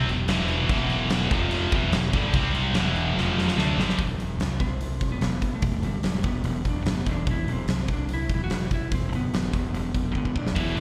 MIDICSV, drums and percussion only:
0, 0, Header, 1, 2, 480
1, 0, Start_track
1, 0, Key_signature, 1, "minor"
1, 0, Tempo, 410959
1, 820, Time_signature, 4, 2, 24, 8
1, 12616, End_track
2, 0, Start_track
2, 0, Title_t, "Drums"
2, 105, Note_on_c, 9, 49, 60
2, 222, Note_off_c, 9, 49, 0
2, 326, Note_on_c, 9, 49, 86
2, 336, Note_on_c, 9, 38, 110
2, 443, Note_off_c, 9, 49, 0
2, 453, Note_off_c, 9, 38, 0
2, 561, Note_on_c, 9, 49, 64
2, 678, Note_off_c, 9, 49, 0
2, 807, Note_on_c, 9, 49, 85
2, 810, Note_on_c, 9, 36, 116
2, 924, Note_off_c, 9, 49, 0
2, 927, Note_off_c, 9, 36, 0
2, 1047, Note_on_c, 9, 49, 65
2, 1164, Note_off_c, 9, 49, 0
2, 1282, Note_on_c, 9, 49, 81
2, 1293, Note_on_c, 9, 38, 123
2, 1399, Note_off_c, 9, 49, 0
2, 1409, Note_off_c, 9, 38, 0
2, 1528, Note_on_c, 9, 49, 64
2, 1531, Note_on_c, 9, 36, 113
2, 1645, Note_off_c, 9, 49, 0
2, 1648, Note_off_c, 9, 36, 0
2, 1761, Note_on_c, 9, 49, 83
2, 1877, Note_off_c, 9, 49, 0
2, 2008, Note_on_c, 9, 49, 63
2, 2012, Note_on_c, 9, 36, 107
2, 2125, Note_off_c, 9, 49, 0
2, 2128, Note_off_c, 9, 36, 0
2, 2245, Note_on_c, 9, 49, 85
2, 2256, Note_on_c, 9, 38, 112
2, 2362, Note_off_c, 9, 49, 0
2, 2373, Note_off_c, 9, 38, 0
2, 2493, Note_on_c, 9, 36, 107
2, 2495, Note_on_c, 9, 49, 65
2, 2609, Note_off_c, 9, 36, 0
2, 2611, Note_off_c, 9, 49, 0
2, 2724, Note_on_c, 9, 49, 85
2, 2731, Note_on_c, 9, 36, 116
2, 2841, Note_off_c, 9, 49, 0
2, 2848, Note_off_c, 9, 36, 0
2, 2973, Note_on_c, 9, 49, 61
2, 3090, Note_off_c, 9, 49, 0
2, 3203, Note_on_c, 9, 49, 82
2, 3214, Note_on_c, 9, 38, 116
2, 3320, Note_off_c, 9, 49, 0
2, 3331, Note_off_c, 9, 38, 0
2, 3452, Note_on_c, 9, 49, 63
2, 3568, Note_off_c, 9, 49, 0
2, 3710, Note_on_c, 9, 38, 61
2, 3826, Note_off_c, 9, 38, 0
2, 3951, Note_on_c, 9, 38, 70
2, 4067, Note_off_c, 9, 38, 0
2, 4067, Note_on_c, 9, 38, 70
2, 4183, Note_off_c, 9, 38, 0
2, 4186, Note_on_c, 9, 38, 91
2, 4303, Note_off_c, 9, 38, 0
2, 4433, Note_on_c, 9, 38, 104
2, 4548, Note_off_c, 9, 38, 0
2, 4548, Note_on_c, 9, 38, 94
2, 4656, Note_on_c, 9, 36, 108
2, 4660, Note_on_c, 9, 46, 72
2, 4665, Note_off_c, 9, 38, 0
2, 4773, Note_off_c, 9, 36, 0
2, 4777, Note_off_c, 9, 46, 0
2, 4906, Note_on_c, 9, 46, 57
2, 5022, Note_off_c, 9, 46, 0
2, 5139, Note_on_c, 9, 46, 69
2, 5149, Note_on_c, 9, 38, 103
2, 5256, Note_off_c, 9, 46, 0
2, 5266, Note_off_c, 9, 38, 0
2, 5373, Note_on_c, 9, 36, 83
2, 5375, Note_on_c, 9, 46, 56
2, 5490, Note_off_c, 9, 36, 0
2, 5491, Note_off_c, 9, 46, 0
2, 5615, Note_on_c, 9, 46, 69
2, 5731, Note_off_c, 9, 46, 0
2, 5850, Note_on_c, 9, 46, 50
2, 5852, Note_on_c, 9, 36, 79
2, 5966, Note_off_c, 9, 46, 0
2, 5969, Note_off_c, 9, 36, 0
2, 6089, Note_on_c, 9, 46, 70
2, 6100, Note_on_c, 9, 38, 100
2, 6206, Note_off_c, 9, 46, 0
2, 6216, Note_off_c, 9, 38, 0
2, 6329, Note_on_c, 9, 46, 54
2, 6331, Note_on_c, 9, 36, 79
2, 6445, Note_off_c, 9, 46, 0
2, 6448, Note_off_c, 9, 36, 0
2, 6565, Note_on_c, 9, 46, 72
2, 6570, Note_on_c, 9, 36, 105
2, 6682, Note_off_c, 9, 46, 0
2, 6687, Note_off_c, 9, 36, 0
2, 6810, Note_on_c, 9, 46, 56
2, 6927, Note_off_c, 9, 46, 0
2, 7045, Note_on_c, 9, 46, 70
2, 7056, Note_on_c, 9, 38, 100
2, 7162, Note_off_c, 9, 46, 0
2, 7172, Note_off_c, 9, 38, 0
2, 7279, Note_on_c, 9, 46, 53
2, 7289, Note_on_c, 9, 36, 86
2, 7396, Note_off_c, 9, 46, 0
2, 7406, Note_off_c, 9, 36, 0
2, 7521, Note_on_c, 9, 46, 66
2, 7637, Note_off_c, 9, 46, 0
2, 7769, Note_on_c, 9, 36, 81
2, 7771, Note_on_c, 9, 46, 47
2, 7886, Note_off_c, 9, 36, 0
2, 7888, Note_off_c, 9, 46, 0
2, 8009, Note_on_c, 9, 46, 69
2, 8020, Note_on_c, 9, 38, 106
2, 8126, Note_off_c, 9, 46, 0
2, 8137, Note_off_c, 9, 38, 0
2, 8250, Note_on_c, 9, 46, 51
2, 8251, Note_on_c, 9, 36, 77
2, 8366, Note_off_c, 9, 46, 0
2, 8368, Note_off_c, 9, 36, 0
2, 8490, Note_on_c, 9, 46, 70
2, 8491, Note_on_c, 9, 36, 107
2, 8607, Note_off_c, 9, 46, 0
2, 8608, Note_off_c, 9, 36, 0
2, 8737, Note_on_c, 9, 46, 57
2, 8854, Note_off_c, 9, 46, 0
2, 8968, Note_on_c, 9, 46, 74
2, 8978, Note_on_c, 9, 38, 98
2, 9085, Note_off_c, 9, 46, 0
2, 9095, Note_off_c, 9, 38, 0
2, 9204, Note_on_c, 9, 46, 56
2, 9210, Note_on_c, 9, 36, 81
2, 9321, Note_off_c, 9, 46, 0
2, 9326, Note_off_c, 9, 36, 0
2, 9446, Note_on_c, 9, 46, 70
2, 9563, Note_off_c, 9, 46, 0
2, 9689, Note_on_c, 9, 36, 82
2, 9690, Note_on_c, 9, 46, 52
2, 9805, Note_off_c, 9, 36, 0
2, 9807, Note_off_c, 9, 46, 0
2, 9928, Note_on_c, 9, 46, 73
2, 9938, Note_on_c, 9, 38, 103
2, 10045, Note_off_c, 9, 46, 0
2, 10055, Note_off_c, 9, 38, 0
2, 10174, Note_on_c, 9, 36, 80
2, 10175, Note_on_c, 9, 46, 55
2, 10290, Note_off_c, 9, 36, 0
2, 10292, Note_off_c, 9, 46, 0
2, 10416, Note_on_c, 9, 36, 101
2, 10418, Note_on_c, 9, 46, 72
2, 10532, Note_off_c, 9, 36, 0
2, 10535, Note_off_c, 9, 46, 0
2, 10664, Note_on_c, 9, 46, 56
2, 10781, Note_off_c, 9, 46, 0
2, 10905, Note_on_c, 9, 46, 64
2, 10916, Note_on_c, 9, 38, 106
2, 11022, Note_off_c, 9, 46, 0
2, 11033, Note_off_c, 9, 38, 0
2, 11137, Note_on_c, 9, 36, 83
2, 11145, Note_on_c, 9, 46, 52
2, 11253, Note_off_c, 9, 36, 0
2, 11262, Note_off_c, 9, 46, 0
2, 11383, Note_on_c, 9, 46, 63
2, 11500, Note_off_c, 9, 46, 0
2, 11616, Note_on_c, 9, 36, 74
2, 11618, Note_on_c, 9, 46, 50
2, 11733, Note_off_c, 9, 36, 0
2, 11735, Note_off_c, 9, 46, 0
2, 11857, Note_on_c, 9, 36, 59
2, 11974, Note_off_c, 9, 36, 0
2, 11976, Note_on_c, 9, 36, 60
2, 12092, Note_off_c, 9, 36, 0
2, 12097, Note_on_c, 9, 36, 74
2, 12214, Note_off_c, 9, 36, 0
2, 12224, Note_on_c, 9, 38, 88
2, 12337, Note_on_c, 9, 36, 98
2, 12341, Note_off_c, 9, 38, 0
2, 12342, Note_on_c, 9, 46, 66
2, 12454, Note_off_c, 9, 36, 0
2, 12458, Note_off_c, 9, 46, 0
2, 12616, End_track
0, 0, End_of_file